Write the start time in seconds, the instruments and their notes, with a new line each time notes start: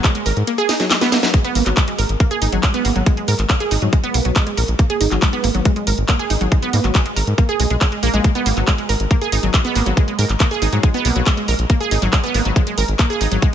0.04 synth arpeggio sound G#3, kick, clap, closed hi-hat
0.15 synth arpeggio sound G#3, closed hi-hat
0.26 analog synth bass G#1, synth arpeggio sound A#4, open hi-hat
0.37 analog synth bass G#2, closed hi-hat
0.47 synth arpeggio sound A#3, closed hi-hat
0.58 synth arpeggio sound G#4, closed hi-hat
0.69 synth arpeggio sound D#4, snare, open hi-hat
0.80 synth arpeggio sound F#3, snare, closed hi-hat
0.91 synth arpeggio sound G#3, snare, clap, closed hi-hat
1.01 synth arpeggio sound B3, snare, closed hi-hat
1.12 synth arpeggio sound A#3, snare, open hi-hat
1.23 synth arpeggio sound F#3, snare, closed hi-hat
1.34 synth arpeggio sound G#3, kick, closed hi-hat
1.45 synth arpeggio sound B3, closed hi-hat
1.55 analog synth bass G#1, synth arpeggio sound A#3, open hi-hat
1.66 analog synth bass G#1, synth arpeggio sound F#3, clap, closed hi-hat
1.77 synth arpeggio sound G#3, kick, clap, closed hi-hat
1.88 synth arpeggio sound G#3, closed hi-hat
1.98 analog synth bass G#1, synth arpeggio sound A#4, open hi-hat
2.09 analog synth bass G#1, closed hi-hat
2.20 synth arpeggio sound A#3, kick, closed hi-hat
2.31 synth arpeggio sound G#4, closed hi-hat
2.42 analog synth bass G#1, synth arpeggio sound D#4, open hi-hat
2.52 analog synth bass G#1, synth arpeggio sound F#3, closed hi-hat
2.63 synth arpeggio sound G#3, kick, clap, closed hi-hat
2.74 synth arpeggio sound B3, closed hi-hat
2.85 analog synth bass G#1, synth arpeggio sound A#3, open hi-hat
2.96 analog synth bass G#1, synth arpeggio sound F#3, closed hi-hat
3.06 synth arpeggio sound G#3, kick, closed hi-hat
3.17 synth arpeggio sound G#3, closed hi-hat
3.28 analog synth bass G#2, synth arpeggio sound A#4, open hi-hat
3.39 analog synth bass G#1, clap, closed hi-hat
3.50 synth arpeggio sound A#3, kick, clap, closed hi-hat
3.60 synth arpeggio sound G#4, closed hi-hat
3.71 analog synth bass G#1, synth arpeggio sound D#4, open hi-hat
3.82 analog synth bass G#2, synth arpeggio sound F#3, closed hi-hat
3.93 synth arpeggio sound G#3, kick, closed hi-hat
4.04 synth arpeggio sound B3, closed hi-hat
4.14 analog synth bass B1, synth arpeggio sound A#3, open hi-hat
4.25 analog synth bass B1, synth arpeggio sound F#3, closed hi-hat
4.36 synth arpeggio sound G#3, kick, clap, closed hi-hat
4.47 synth arpeggio sound G#3, closed hi-hat
4.57 analog synth bass A#1, synth arpeggio sound A#4, open hi-hat
4.68 analog synth bass A#1, closed hi-hat
4.79 synth arpeggio sound A#3, kick, closed hi-hat
4.90 synth arpeggio sound G#4, closed hi-hat
5.01 analog synth bass G#1, synth arpeggio sound D#4, open hi-hat
5.11 analog synth bass G#1, synth arpeggio sound F#3, clap, closed hi-hat
5.22 synth arpeggio sound G#3, kick, clap, closed hi-hat
5.33 synth arpeggio sound B3, closed hi-hat
5.44 analog synth bass G#1, synth arpeggio sound A#3, open hi-hat
5.55 analog synth bass G#1, synth arpeggio sound F#3, closed hi-hat
5.65 synth arpeggio sound G#3, kick, closed hi-hat
5.76 synth arpeggio sound G#3, closed hi-hat
5.87 analog synth bass G#1, synth arpeggio sound A#4, open hi-hat
5.98 analog synth bass G#1, closed hi-hat
6.09 synth arpeggio sound A#3, kick, clap, closed hi-hat
6.19 synth arpeggio sound G#4, closed hi-hat
6.30 analog synth bass G#1, synth arpeggio sound D#4, open hi-hat
6.41 analog synth bass G#1, synth arpeggio sound F#3, closed hi-hat
6.52 synth arpeggio sound G#3, kick, closed hi-hat
6.62 synth arpeggio sound B3, closed hi-hat
6.73 analog synth bass G#2, synth arpeggio sound A#3, open hi-hat
6.84 analog synth bass G#1, synth arpeggio sound F#3, clap, closed hi-hat
6.95 synth arpeggio sound G#3, kick, clap, closed hi-hat
7.06 synth arpeggio sound G#3, closed hi-hat
7.16 analog synth bass G#1, synth arpeggio sound A#4, open hi-hat
7.27 analog synth bass G#2, closed hi-hat
7.38 synth arpeggio sound A#3, kick, closed hi-hat
7.49 synth arpeggio sound G#4, closed hi-hat
7.60 analog synth bass B1, synth arpeggio sound G#3, open hi-hat
7.70 analog synth bass B1, synth arpeggio sound G#3, closed hi-hat
7.81 synth arpeggio sound G#3, kick, clap, closed hi-hat
7.92 synth arpeggio sound G#3, closed hi-hat
8.03 analog synth bass A#1, synth arpeggio sound A#3, open hi-hat
8.14 analog synth bass A#1, synth arpeggio sound G#3, closed hi-hat
8.24 synth arpeggio sound G#3, kick, closed hi-hat
8.35 synth arpeggio sound B3, closed hi-hat
8.46 analog synth bass G#1, synth arpeggio sound A#3, open hi-hat
8.57 analog synth bass G#1, synth arpeggio sound F#3, clap
8.68 synth arpeggio sound G#3, kick, clap, closed hi-hat
8.78 synth arpeggio sound G#3, closed hi-hat
8.89 analog synth bass G#1, synth arpeggio sound A#4, open hi-hat
9.00 analog synth bass G#1, closed hi-hat
9.11 synth arpeggio sound A#3, kick, closed hi-hat
9.22 synth arpeggio sound G#4, closed hi-hat
9.32 analog synth bass G#1, synth arpeggio sound D#4, open hi-hat
9.43 analog synth bass G#1, synth arpeggio sound F#3, closed hi-hat
9.54 synth arpeggio sound G#3, kick, clap, closed hi-hat
9.65 synth arpeggio sound B3, closed hi-hat
9.75 analog synth bass G#1, synth arpeggio sound A#3, open hi-hat
9.86 analog synth bass G#1, synth arpeggio sound F#3, closed hi-hat
9.97 synth arpeggio sound G#3, kick, closed hi-hat
10.08 synth arpeggio sound G#3, closed hi-hat
10.19 analog synth bass G#2, synth arpeggio sound A#4, open hi-hat
10.29 analog synth bass G#1, clap, closed hi-hat
10.40 synth arpeggio sound A#3, kick, clap, closed hi-hat
10.51 synth arpeggio sound G#4, closed hi-hat
10.62 analog synth bass G#1, synth arpeggio sound D#4, open hi-hat
10.73 analog synth bass G#2, synth arpeggio sound F#3, closed hi-hat
10.83 synth arpeggio sound G#3, kick, closed hi-hat
10.94 synth arpeggio sound B3, closed hi-hat
11.05 analog synth bass B1, synth arpeggio sound A#3, open hi-hat
11.16 analog synth bass B1, synth arpeggio sound F#3, closed hi-hat
11.27 synth arpeggio sound G#3, kick, clap, closed hi-hat
11.37 synth arpeggio sound G#3, closed hi-hat
11.48 analog synth bass A#1, synth arpeggio sound A#4, open hi-hat
11.59 analog synth bass A#1, closed hi-hat
11.70 synth arpeggio sound A#3, kick, closed hi-hat
11.81 synth arpeggio sound G#4, closed hi-hat
11.91 analog synth bass G#1, synth arpeggio sound D#4, open hi-hat
12.02 analog synth bass G#1, synth arpeggio sound F#3, clap, closed hi-hat
12.13 synth arpeggio sound G#3, kick, clap, closed hi-hat
12.24 synth arpeggio sound B3, closed hi-hat
12.34 analog synth bass G#1, synth arpeggio sound A#3, open hi-hat
12.45 analog synth bass G#1, synth arpeggio sound F#3, closed hi-hat
12.56 synth arpeggio sound G#3, kick, closed hi-hat
12.67 synth arpeggio sound G#3, closed hi-hat
12.78 analog synth bass G#1, synth arpeggio sound A#4, open hi-hat
12.88 analog synth bass G#1, closed hi-hat
12.99 synth arpeggio sound A#3, kick, clap, closed hi-hat
13.10 synth arpeggio sound G#4, closed hi-hat
13.21 analog synth bass G#1, synth arpeggio sound D#4, open hi-hat
13.32 analog synth bass G#1, synth arpeggio sound F#3, closed hi-hat
13.42 synth arpeggio sound G#3, kick, closed hi-hat